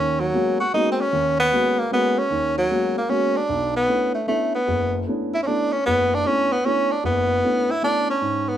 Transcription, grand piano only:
Already playing: D#2 D#3
0.34 G#3 A#3 B3 C#4 F#4
0.74 G#3 A#3 B3 C#4 F#4
1.13 D#2 D#3
1.52 G#3 A#3 B3 C#4 F#4
1.91 G#3 A#3 B3 C#4 F#4
2.31 D#2
2.70 G#3 A#3 B3 C#4 F#4
3.09 G#3 A#3 B3 C#4 F#4
3.49 B1
3.88 A3 B3 C#4 D4 E4
4.27 A3 B3 C#4 D4 E4
4.67 F#1
5.07 A3 B3 C#4 D4 E4
5.47 A3 B3 C#4 D4 E4
5.87 F#1
6.25 A3 B3 C#4 D4 E4
6.65 A3 B3 C#4 D4 E4
7.04 F#1
7.44 A3 B3 C#4 D4 E4
7.82 A3 B3 C#4 D4 E4
8.22 G#2

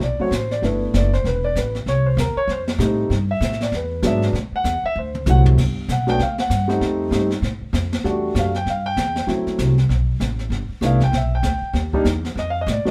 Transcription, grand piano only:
0.03 D5
0.20 F#3 A3 C4 F#4 C#5
0.35 C5
0.52 D5
0.62 A3 B3 D4 E4 B4
0.96 D5
1.14 C5
1.27 B4
1.44 D5
1.58 B4
1.88 C#5
2.06 C5
2.20 A#4
2.37 C#5
2.51 C5
2.79 G3 A3 C4 D#4
3.31 E5
3.63 D5
3.76 B4
4.02 F#3 G#3 B3 D4
4.07 E5
4.56 F#5
4.86 E5
4.99 C5
5.27 F#3 A3 C4 E4 F#5
5.91 F#5
6.07 F#3 A3 B3 D4 G5
6.22 F5
6.40 F#5
6.68 G3 A3 C4 D#4
7.11 G3 A3 C4 D#4
8.04 G3 A3 D4 F#4
8.39 F5
8.56 G5
8.70 F5
8.86 G5
9.27 F#3 A3 C4 E4
10.81 A3 B3 D4 E4
10.86 F5
11.04 G5
11.17 E5
11.35 G5
11.94 G3 A#3 D4 D#4
12.39 D#5
12.50 F5
12.61 D#5
12.72 D5
12.85 F#3 A3 B3 D4

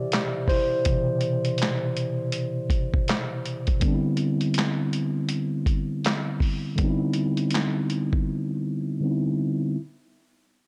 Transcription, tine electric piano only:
Already playing: B2 C3 E3 G4 D5 E5
0.49 E4 C5
0.86 B2 C3 E3
3.80 D3 G3 B3
3.86 C4 D4
3.94 E4
6.76 D3 G3 B3
6.81 C4 D#4
6.90 E4
9.00 D3 G3 B3 C4 D#4
9.11 E4

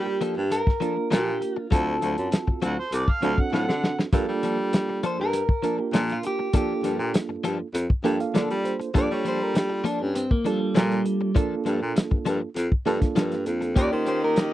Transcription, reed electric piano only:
Already playing: A#3 D4 F4 A#4
0.81 A#3 D4 F4 A#4
1.72 C4 F4 F#4 A4
3.22 C4 D4 F#4 A4
4.13 A#3 D4 F4 A4
5.63 A#3 D4 F4 A#4
6.53 A#3 D4 F4 A4
8.04 A#3 D4 F4 A4 G5
8.21 F5
8.35 D5
8.65 C5
8.95 A#3 D4 F4 A4
10.46 A#3 D4 F4 A4
11.35 A#3 D4 F4 A4
12.86 A#3 D4 F4 A4
13.75 A#3 C#4 F4 G4

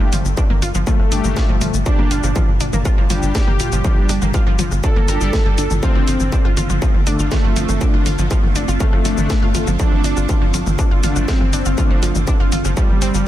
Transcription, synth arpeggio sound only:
0.00 F3 F4
0.13 F3 F4
0.37 D4 D5
0.50 A#3 A#4
0.62 F4 F5
0.75 F3 F4
0.87 F3 F4
1.12 D4 D5
1.24 A#3 A#4
1.37 F4 F5
1.49 F3 F4
1.61 F3 F4
1.86 D4 D5
1.99 A#3 A#4
2.11 F4 F5
2.23 F3 F4
2.36 F3 F4
2.61 D4 D5
2.73 A#3 A#4
2.85 F4 F5
2.98 F3 F4
3.10 F3 F4
3.35 D4 D5
3.47 A#3 A#4
3.60 F4 F5
3.72 F3 F4
3.84 F3 F4
4.09 D4 D5
4.22 A#3 A#4
4.34 F4 F5
4.47 F3 F4
4.59 F3 F4
4.84 D4 D5
4.96 A#3 A#4
5.08 A#4 A#5
5.21 D4 D5
5.46 G3 G4
5.58 D4 D5
5.83 F4 F5
5.95 F3 F4
6.08 F3 F4
6.32 D4 D5
6.45 F4 F5
6.57 F4 F5
6.70 F3 F4
6.82 F3 F4
7.07 D4 D5
7.19 F4 F5
7.32 F4 F5
7.44 F3 F4
7.56 F3 F4
7.81 D4 D5
7.94 F4 F5
8.06 F4 F5
8.19 F3 F4
8.31 F3 F4
8.56 D4 D5
8.68 F4 F5
8.80 F4 F5
8.93 F3 F4
9.05 F3 F4
9.30 D4 D5
9.42 F4 F5
9.55 F4 F5
9.67 F3 F4
9.80 F3 F4
10.04 D4 D5
10.17 F4 F5
10.29 F4 F5
10.42 F3 F4
10.54 F3 F4
10.79 D4 D5
10.91 F4 F5
11.04 F4 F5
11.16 F3 F4
11.28 F3 F4
11.53 D4 D5
11.66 F4 F5
11.78 F4 F5
11.90 F3 F4
12.03 F3 F4
12.27 D4 D5
12.40 F4 F5
12.52 F4 F5
12.65 F3 F4
12.77 F3 F4
13.02 C4 C5
13.14 F3 F4

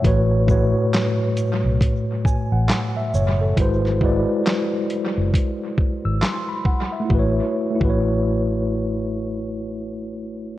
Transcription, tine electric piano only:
0.02 A2 A3 F#4 B4
0.07 C#5
0.46 A2 A3 F#4
0.50 B4 C#5
2.25 G#5
2.52 F#5
2.97 E5
3.15 C#5
3.41 A4
3.57 G#3 E4 F#4 B4
3.61 C5
4.00 G#3 E4 F#4 B4
4.05 D5
6.05 E6
6.22 C6
6.49 B5
6.66 F#5
6.92 E5
7.00 A3
7.05 E4
7.09 F#4
7.14 B4
7.19 C#5
7.70 A3
7.75 E4
7.80 F#4
7.84 B4
7.89 C#5

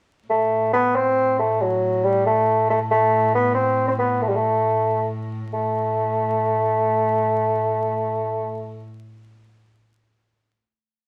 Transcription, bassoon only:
0.29 A3
0.73 B3
0.95 C4
1.39 A3
1.61 F#3
2.04 G3
2.26 A3
2.70 A3
2.91 A3
3.35 B3
3.54 C4
3.88 C4
3.99 B3
4.22 A3
4.28 G3
4.35 A3
5.53 A3

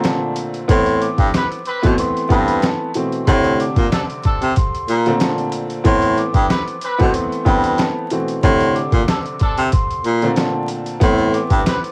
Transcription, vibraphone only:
0.04 A5
0.69 C6
1.01 D6
1.99 C6
2.30 B5
2.63 A5
3.25 C6
3.60 D6
4.57 C6
4.90 A#5
5.20 A5
5.86 C6
6.18 D6
7.14 C6
7.46 B5
7.79 A5
8.43 C6
8.75 D6
9.73 C6
10.06 A#5
10.37 A5
11.01 C6
11.34 D6

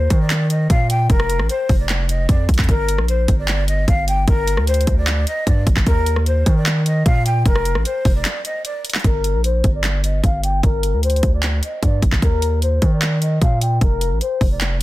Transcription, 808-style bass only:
0.10 D#3
0.70 A#2
1.10 F1
1.40 A1
1.69 F1
2.29 F2
2.49 C2
2.59 F2
2.69 G1
2.98 A#1
3.28 G1
3.88 G1
4.28 G1
4.57 D2
4.87 D2
5.47 G2
5.67 G1
5.77 G1
5.87 D#2
6.46 D#3
7.06 A#2
7.46 F1
7.75 A1
8.05 F1
9.04 G1
9.34 A#1
9.64 G1
10.24 G1
10.63 G1
10.93 D2
11.23 D2
11.83 G2
12.02 G1
12.12 G1
12.22 D#2
12.82 D#3
13.42 A#2
13.81 F1
14.11 A1
14.41 F1

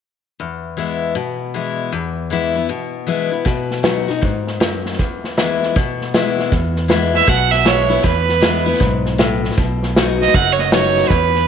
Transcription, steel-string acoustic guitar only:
0.40 E2
0.77 E3 G#3 B3 E4
1.15 B2
1.54 E3 G#3 B3 E4
1.92 E2
2.30 E3 G#3 B3 E4
2.55 B3 E4
2.69 B2
3.07 E3 G#3 B3 E4
3.31 B3 E4
3.45 B2
3.83 F#3 B3 D#4 F#4
4.08 D#4 F#4
4.21 G#2
4.60 F#2
5.00 E2
5.37 E3 G#3 B3 E4
5.76 B2
6.14 E3 G#3 B3 E4
6.52 E2
6.88 E3 G#3 B3 E4
7.27 B2
7.64 E3 G#3 B3 E4
7.90 B3 E4
8.03 E2
8.41 E3 G#3 B3 E4
8.66 B3 E4
8.80 G#2
9.18 A2
9.58 B2
9.97 F#3 B3 D#4 F#4
10.34 F#2
10.72 F#3 B3 D#4 F#4
11.11 E2

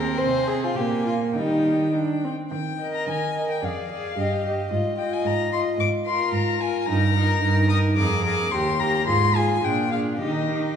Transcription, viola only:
Already playing: C4
0.79 A#3
1.38 G3
1.95 D4
2.24 C4
2.81 A#4
3.37 A#4
3.63 G#4
3.91 G#4
4.17 G4
4.46 G4
4.72 F4
4.98 F4
5.53 F4
6.08 F4
6.60 F4
6.89 D#4
7.16 D#4
7.43 D#4
7.69 D#4
7.98 G#4
8.26 G#4
8.54 G4
8.79 G4
9.08 F4
9.37 F4
9.65 D4
9.92 D4
10.23 D#4
10.52 D#4

